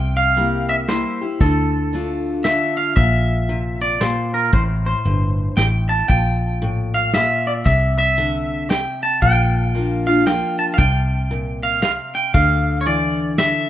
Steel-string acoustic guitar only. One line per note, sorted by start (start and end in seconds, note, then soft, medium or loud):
0.00 0.85 C3 medium
0.36 0.87 G3 medium
0.36 0.87 A#3 medium
0.36 0.87 E4 medium
0.36 0.87 G4 medium
0.88 1.20 G3 medium
0.88 1.20 A#3 medium
0.88 1.20 E4 medium
0.88 1.20 G4 medium
1.21 1.41 E4 soft
1.21 1.40 G4 medium
1.41 1.92 D3 medium
1.93 2.43 D3 soft
1.93 2.44 A3 medium
1.93 2.44 D4 medium
1.93 2.44 F4 medium
2.45 2.95 D3 medium
2.45 2.95 A3 medium
2.45 2.96 D4 medium
2.45 2.96 F4 medium
2.97 3.98 A#2 medium
3.49 3.99 C3 medium
4.01 4.51 A#2 medium
4.53 5.53 A2 medium
5.05 5.56 G2 medium
5.58 6.08 A2 medium
6.09 7.10 A#2 medium
6.62 7.12 A2 medium
7.14 7.64 A#2 medium
7.66 8.66 C3 medium
8.18 8.68 D3 medium
8.69 9.20 C3 medium
9.22 10.22 A#2 medium
9.75 10.06 F3 medium
9.75 10.06 A#3 medium
9.75 10.06 D4 medium
9.75 10.06 F4 medium
10.07 10.26 D4 soft
10.07 10.26 F4 medium
10.26 10.76 F3 medium
10.26 10.77 A#3 medium
10.26 10.77 D4 medium
10.26 10.77 F4 medium
10.79 11.79 C3 medium
11.31 11.81 A#2 medium
11.83 12.32 C3 medium
12.35 13.35 D3 medium
12.86 13.36 E3 medium
13.38 13.70 D3 medium